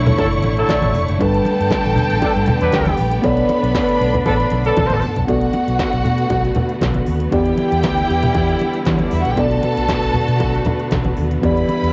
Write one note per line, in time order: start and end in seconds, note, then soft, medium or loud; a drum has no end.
0.00 0.11 B1 loud
0.00 1.15 B2 medium
0.00 1.16 D3 medium
0.00 1.15 A3 medium
0.00 5.24 A3 medium
0.00 1.16 D4 medium
0.00 1.16 E4 medium
0.00 1.17 C#5 medium
0.00 1.16 C#6 loud
0.06 closed hi-hat soft
0.06 low conga medium
0.18 0.44 F#1 loud
0.18 0.27 F#3 medium
0.18 0.27 E4 medium
0.18 0.27 A4 medium
0.18 kick loud
0.18 closed hi-hat medium
0.18 muted conga medium
0.33 closed hi-hat soft
0.43 0.62 A1 loud
0.43 closed hi-hat medium
0.43 muted conga medium
0.57 0.93 F#3 loud
0.57 0.93 E4 medium
0.57 0.93 A4 loud
0.57 closed hi-hat soft
0.69 1.16 D5 medium
0.69 kick loud
0.69 snare loud
0.69 closed hi-hat medium
0.69 high conga medium
0.82 0.92 A1 medium
0.82 closed hi-hat medium
0.82 high conga medium
0.94 1.04 F1 loud
0.94 open hi-hat medium
0.94 high conga medium
1.08 1.17 F#1 loud
1.08 closed hi-hat medium
1.19 1.39 G1 loud
1.19 3.21 D3 medium
1.19 3.19 G3 medium
1.19 5.24 B3 medium
1.19 3.19 D4 medium
1.19 3.20 A4 medium
1.19 2.70 A4 medium
1.19 3.20 B4 medium
1.19 3.21 G5 medium
1.19 2.71 A5 loud
1.19 kick loud
1.19 closed hi-hat medium
1.34 closed hi-hat medium
1.45 closed hi-hat medium
1.45 muted conga medium
1.60 1.68 G2 medium
1.60 closed hi-hat medium
1.70 kick loud
1.70 snare loud
1.70 closed hi-hat medium
1.70 high conga medium
1.85 1.93 A1 medium
1.85 closed hi-hat medium
1.96 closed hi-hat medium
1.96 low conga medium
2.10 2.19 A1 medium
2.10 closed hi-hat medium
2.22 2.31 F#3 medium
2.22 2.31 D4 medium
2.22 2.31 A4 medium
2.22 muted fingered electric bass stroke soft
2.22 kick loud
2.22 closed hi-hat medium
2.22 muted conga medium
2.36 2.44 G2 loud
2.36 closed hi-hat soft
2.46 closed hi-hat medium
2.46 muted conga medium
2.46 low conga medium
2.61 2.70 E2 medium
2.61 2.97 F#3 medium
2.61 2.97 D4 medium
2.61 2.97 B4 loud
2.61 closed hi-hat soft
2.72 2.91 D2 loud
2.72 3.24 G4 medium
2.72 3.23 G5 medium
2.72 kick loud
2.72 snare loud
2.72 closed hi-hat medium
2.72 high conga medium
2.85 closed hi-hat soft
2.85 high conga medium
2.97 3.17 A#1 loud
2.97 open hi-hat medium
2.97 high conga medium
3.11 closed hi-hat medium
3.22 3.42 B1 loud
3.22 5.25 D3 medium
3.22 5.23 B3 medium
3.22 5.26 D4 medium
3.22 5.24 A4 medium
3.22 4.74 B4 medium
3.22 5.24 C#5 medium
3.22 5.25 D5 medium
3.22 4.74 B5 medium
3.22 kick loud
3.22 closed hi-hat medium
3.22 muted conga soft
3.37 closed hi-hat medium
3.49 closed hi-hat medium
3.49 muted conga medium
3.63 3.72 B1 loud
3.63 closed hi-hat medium
3.75 kick loud
3.75 snare loud
3.75 closed hi-hat medium
3.75 high conga medium
3.89 closed hi-hat medium
4.01 4.19 B1 loud
4.01 closed hi-hat medium
4.14 closed hi-hat medium
4.14 low conga medium
4.26 4.44 A1 loud
4.26 4.35 F#3 medium
4.26 4.35 D4 medium
4.26 4.35 A4 loud
4.26 kick loud
4.26 closed hi-hat medium
4.26 muted conga soft
4.40 closed hi-hat soft
4.50 4.70 B1 loud
4.50 closed hi-hat medium
4.50 muted conga medium
4.65 5.01 F#3 medium
4.65 5.01 D4 medium
4.65 5.01 A4 loud
4.65 closed hi-hat soft
4.77 4.87 B1 medium
4.77 5.27 A4 medium
4.77 5.27 A5 medium
4.77 kick loud
4.77 closed hi-hat loud
4.77 high tom medium
4.77 high conga medium
4.90 5.00 A1 medium
4.90 closed hi-hat soft
4.90 mid tom medium
4.90 high conga medium
5.02 mid tom loud
5.02 open hi-hat medium
5.02 high conga medium
5.16 5.25 B1 medium
5.16 closed hi-hat medium
5.16 floor tom loud
5.27 5.46 B1 loud
5.27 11.93 D3 medium
5.27 7.30 A3 medium
5.27 11.93 B3 medium
5.27 7.28 B3 medium
5.27 7.30 F#4 medium
5.27 7.03 F#4 loud
5.27 7.29 F#4 medium
5.27 7.29 A4 medium
5.27 7.30 D5 medium
5.27 7.03 F#5 loud
5.27 kick loud
5.27 closed hi-hat medium
5.41 closed hi-hat soft
5.53 closed hi-hat medium
5.53 muted conga medium
5.68 5.76 B1 medium
5.68 closed hi-hat medium
5.79 kick loud
5.79 snare loud
5.79 closed hi-hat medium
5.79 high conga medium
5.93 6.02 B1 medium
5.93 closed hi-hat soft
6.05 6.23 B2 loud
6.05 closed hi-hat medium
6.05 low conga medium
6.18 closed hi-hat medium
6.30 6.48 B1 medium
6.30 kick loud
6.30 closed hi-hat medium
6.30 muted conga soft
6.45 closed hi-hat soft
6.55 closed hi-hat medium
6.55 muted conga medium
6.55 low conga medium
6.69 closed hi-hat soft
6.81 7.00 B1 medium
6.81 kick loud
6.81 snare loud
6.81 closed hi-hat medium
6.81 high conga medium
6.94 closed hi-hat soft
6.94 high conga medium
7.06 7.26 D#2 medium
7.06 open hi-hat medium
7.20 closed hi-hat medium
7.31 7.51 E2 loud
7.31 9.33 E3 medium
7.31 9.36 G3 medium
7.31 9.34 B3 medium
7.31 9.36 E4 medium
7.31 8.79 G4 medium
7.31 9.34 G4 medium
7.31 9.34 D5 medium
7.31 8.79 G5 loud
7.31 kick loud
7.31 closed hi-hat medium
7.46 closed hi-hat soft
7.58 closed hi-hat medium
7.58 muted conga medium
7.72 7.84 E2 loud
7.72 closed hi-hat medium
7.83 8.02 D2 medium
7.83 kick loud
7.83 snare loud
7.83 closed hi-hat medium
7.83 high conga medium
7.98 closed hi-hat soft
8.10 8.28 E2 loud
8.10 closed hi-hat medium
8.23 closed hi-hat medium
8.23 low conga medium
8.35 8.54 E2 medium
8.35 kick loud
8.35 closed hi-hat medium
8.35 muted conga soft
8.49 closed hi-hat soft
8.59 closed hi-hat medium
8.59 muted conga medium
8.74 closed hi-hat soft
8.86 8.96 E3 loud
8.86 8.95 B3 medium
8.86 8.95 B4 medium
8.86 kick loud
8.86 snare loud
8.86 closed hi-hat medium
8.86 high conga medium
8.95 9.04 C#4 medium
8.95 9.04 C#5 medium
8.95 closed hi-hat soft
9.00 high conga medium
9.04 9.13 D4 medium
9.04 9.12 D5 medium
9.11 9.22 E2 loud
9.11 9.21 E4 medium
9.11 9.21 E5 medium
9.11 open hi-hat medium
9.21 9.29 F#4 medium
9.21 9.29 F#5 medium
9.25 9.34 A#1 medium
9.25 closed hi-hat medium
9.30 9.38 G4 medium
9.30 9.38 G5 medium
9.36 9.56 B1 loud
9.36 11.38 B2 medium
9.36 11.42 A3 medium
9.36 11.39 B3 medium
9.36 11.42 F#4 medium
9.36 11.39 A4 medium
9.36 11.15 A4 loud
9.36 11.40 D5 medium
9.36 11.14 A5 loud
9.36 kick loud
9.36 closed hi-hat medium
9.51 closed hi-hat soft
9.63 closed hi-hat medium
9.63 muted conga medium
9.77 9.86 B1 medium
9.77 closed hi-hat soft
9.89 kick loud
9.89 snare loud
9.89 closed hi-hat medium
9.89 high conga medium
10.03 10.11 B1 medium
10.03 closed hi-hat medium
10.14 closed hi-hat medium
10.14 low conga medium
10.28 10.42 B2 medium
10.28 closed hi-hat medium
10.40 10.59 B1 medium
10.40 kick loud
10.40 closed hi-hat medium
10.40 muted conga soft
10.55 closed hi-hat soft
10.65 closed hi-hat medium
10.65 muted conga medium
10.65 low conga medium
10.80 closed hi-hat soft
10.91 11.10 B1 medium
10.91 kick loud
10.91 snare loud
10.91 closed hi-hat medium
10.91 high conga medium
11.04 closed hi-hat soft
11.04 high conga medium
11.17 11.36 D#2 medium
11.17 open hi-hat medium
11.31 closed hi-hat soft
11.41 11.62 E2 loud
11.41 11.93 E3 medium
11.41 11.93 G3 medium
11.41 11.93 B3 medium
11.41 11.93 E4 medium
11.41 11.93 G4 medium
11.41 11.93 B4 loud
11.41 11.93 D5 medium
11.41 11.93 B5 loud
11.41 kick loud
11.41 closed hi-hat medium
11.41 muted conga soft
11.57 closed hi-hat soft
11.68 closed hi-hat medium
11.68 muted conga medium
11.83 11.91 E2 medium
11.83 closed hi-hat medium